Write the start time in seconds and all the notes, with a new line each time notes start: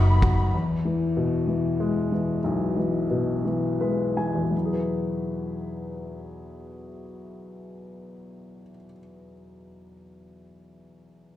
Already playing: F#1 F#2 B2 D#3 F#3 D#4 F#4 B5
0.22 F#4, kick, ride
0.54 E2
0.85 E3
1.17 B2
1.47 E3
1.80 G#3
2.12 E3
2.44 B1
2.77 E3
3.11 B2
3.45 E3
3.80 G#3 B4
4.17 E3 G#5
4.35 E2
4.42 B2
4.51 F#3
4.58 E4
4.65 G#4
4.73 B4